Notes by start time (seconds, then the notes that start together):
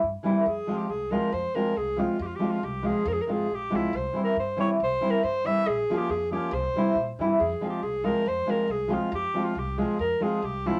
0.03 G2
0.23 E3 G3 C4 E4
0.40 A#4
0.46 F2 G#4
0.67 F3 G#3 C4 F4
0.77 G4
0.90 C2 G#4
1.11 F3 G#3 C4 F4 A#4
1.32 F2 C5
1.55 F3 G#3 C4 F4 A#4
1.77 C2 G#4
1.96 F3 G#3 C4 F4
2.19 F2 G4
2.26 F4
2.36 F3 G4
2.40 G#3 C4 F4
2.50 F4
2.63 C2 G4
2.83 F3 G#3 C4 F4 G#4
3.05 F2 A#4
3.13 G#4
3.21 A#4
3.26 G#1 F3 G#3 C4 F4 A#4
3.32 G#4
3.50 A#1
3.55 G4
3.70 C2 F3 G#3 C4 F4
3.75 E4
3.93 C2 C5
4.13 E3 G3 C4 E4
4.24 A#4
4.36 G2 C5
4.57 E3 G3 C4 E4 C#5
4.80 C2 C5
5.01 E3 G3 C4 E4
5.10 A#4
5.23 G2 C5
5.44 E3 G3 C4 E4 E5
5.67 A#1 G#4
5.90 F3 A#3 C#4 F4
5.97 G4
6.09 F2 G#4
6.31 F3 A#3 C#4 F4 G4
6.51 C2 C5
6.74 C3 E3 G3 C4
6.78 E4
6.95 A#2
7.19 G2 E3 G3 C4 E4
7.39 F2 G#4
7.61 F3 G#3 C4 F4
7.69 G4
7.83 C2 G#4
8.03 F3 G#3 C4 F4 A#4
8.26 F2 C5
8.46 F3 G#3 C4 F4 A#4
8.68 C2 G#4
8.88 F3 G#3 C4 F4
8.93 F4
9.12 F2 G4
9.34 F3 G#3 C4 F4
9.44 F4
9.55 C2 G4
9.77 F3 G#3 C4 F4 G#4
9.99 F2 A#4
10.20 F3 G#3 C4 F4 G#4
10.42 C2 G4
10.66 F3 G#3 C4 E4 F4